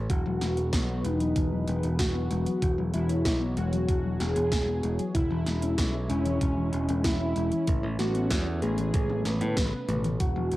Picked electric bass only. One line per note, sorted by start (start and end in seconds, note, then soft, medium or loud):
0.10 0.24 E1 loud
0.26 0.40 E1 medium
0.41 0.70 E1 medium
0.73 1.02 B1 loud
1.04 1.33 E1 medium
1.36 1.65 E1 loud
1.68 1.82 E1 loud
1.83 1.98 E1 loud
1.99 2.28 E1 medium
2.31 2.45 E1 medium
2.62 2.77 E1 loud
2.78 2.93 E1 medium
2.94 3.23 E1 medium
3.25 3.54 B1 loud
3.57 3.86 E1 medium
3.89 4.18 E1 medium
4.20 4.35 E1 loud
4.36 4.50 E1 loud
4.52 4.81 E1 medium
4.83 4.98 E1 medium
5.15 5.29 E1 medium
5.31 5.45 E1 medium
5.46 5.76 E1 medium
5.78 6.07 B1 loud
6.10 6.39 E1 loud
6.41 6.70 E1 loud
6.73 6.87 E1 loud
6.89 7.03 E1 medium
7.04 7.33 E1 medium
7.36 7.50 E1 medium
7.68 7.82 A1 loud
7.83 7.98 A1 loud
7.99 8.28 A1 medium
8.31 8.60 E2 loud
8.62 8.91 A1 medium
8.94 9.23 A1 medium
9.25 9.40 A1 medium
9.41 9.56 A2 medium
9.57 9.72 A1 medium
9.89 10.18 A1 medium
10.20 10.35 E1 medium
10.36 10.51 E1 medium
10.52 10.57 E1 medium